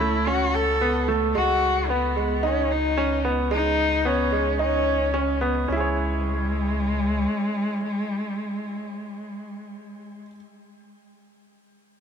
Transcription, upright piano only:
0, 0, Header, 1, 2, 480
1, 0, Start_track
1, 0, Key_signature, 4, "minor"
1, 0, Tempo, 540541
1, 1209, Time_signature, 4, 2, 24, 8
1, 10657, End_track
2, 0, Start_track
2, 0, Title_t, "Upright piano"
2, 0, Program_c, 0, 0
2, 6, Note_on_c, 0, 57, 81
2, 219, Note_off_c, 0, 57, 0
2, 241, Note_on_c, 0, 61, 92
2, 668, Note_off_c, 0, 61, 0
2, 722, Note_on_c, 0, 59, 87
2, 937, Note_off_c, 0, 59, 0
2, 962, Note_on_c, 0, 57, 85
2, 1177, Note_off_c, 0, 57, 0
2, 1198, Note_on_c, 0, 56, 100
2, 1627, Note_off_c, 0, 56, 0
2, 1684, Note_on_c, 0, 59, 82
2, 1899, Note_off_c, 0, 59, 0
2, 1922, Note_on_c, 0, 56, 83
2, 2137, Note_off_c, 0, 56, 0
2, 2158, Note_on_c, 0, 63, 96
2, 2587, Note_off_c, 0, 63, 0
2, 2642, Note_on_c, 0, 61, 95
2, 2857, Note_off_c, 0, 61, 0
2, 2882, Note_on_c, 0, 59, 86
2, 3097, Note_off_c, 0, 59, 0
2, 3116, Note_on_c, 0, 56, 100
2, 3546, Note_off_c, 0, 56, 0
2, 3597, Note_on_c, 0, 59, 90
2, 3814, Note_off_c, 0, 59, 0
2, 3836, Note_on_c, 0, 56, 81
2, 4054, Note_off_c, 0, 56, 0
2, 4078, Note_on_c, 0, 63, 90
2, 4507, Note_off_c, 0, 63, 0
2, 4562, Note_on_c, 0, 61, 91
2, 4777, Note_off_c, 0, 61, 0
2, 4805, Note_on_c, 0, 59, 83
2, 5019, Note_off_c, 0, 59, 0
2, 5045, Note_on_c, 0, 61, 71
2, 5083, Note_on_c, 0, 64, 80
2, 5117, Note_on_c, 0, 68, 76
2, 5153, Note_on_c, 0, 73, 70
2, 9077, Note_off_c, 0, 61, 0
2, 9114, Note_off_c, 0, 64, 0
2, 9148, Note_off_c, 0, 68, 0
2, 9184, Note_off_c, 0, 73, 0
2, 10657, End_track
0, 0, End_of_file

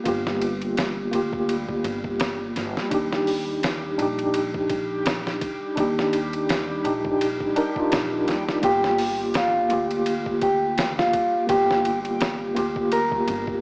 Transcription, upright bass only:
0, 0, Header, 1, 2, 480
1, 0, Start_track
1, 0, Key_signature, -2, "minor"
1, 0, Tempo, 714286
1, 39, Time_signature, 4, 2, 24, 8
1, 9146, End_track
2, 0, Start_track
2, 0, Title_t, "Upright bass"
2, 0, Program_c, 0, 32
2, 39, Note_on_c, 0, 31, 95
2, 738, Note_off_c, 0, 31, 0
2, 756, Note_on_c, 0, 38, 81
2, 1217, Note_off_c, 0, 38, 0
2, 1240, Note_on_c, 0, 31, 92
2, 1699, Note_off_c, 0, 31, 0
2, 1720, Note_on_c, 0, 31, 78
2, 1838, Note_off_c, 0, 31, 0
2, 1961, Note_on_c, 0, 39, 92
2, 2660, Note_off_c, 0, 39, 0
2, 2679, Note_on_c, 0, 34, 87
2, 3618, Note_off_c, 0, 34, 0
2, 3882, Note_on_c, 0, 39, 94
2, 4580, Note_off_c, 0, 39, 0
2, 4598, Note_on_c, 0, 34, 84
2, 5058, Note_off_c, 0, 34, 0
2, 5322, Note_on_c, 0, 34, 82
2, 5535, Note_off_c, 0, 34, 0
2, 5563, Note_on_c, 0, 39, 71
2, 5775, Note_off_c, 0, 39, 0
2, 5801, Note_on_c, 0, 31, 88
2, 6500, Note_off_c, 0, 31, 0
2, 6527, Note_on_c, 0, 38, 84
2, 7463, Note_off_c, 0, 38, 0
2, 7724, Note_on_c, 0, 31, 88
2, 8421, Note_off_c, 0, 31, 0
2, 8443, Note_on_c, 0, 38, 84
2, 8901, Note_off_c, 0, 38, 0
2, 8923, Note_on_c, 0, 31, 92
2, 9146, Note_off_c, 0, 31, 0
2, 9146, End_track
0, 0, End_of_file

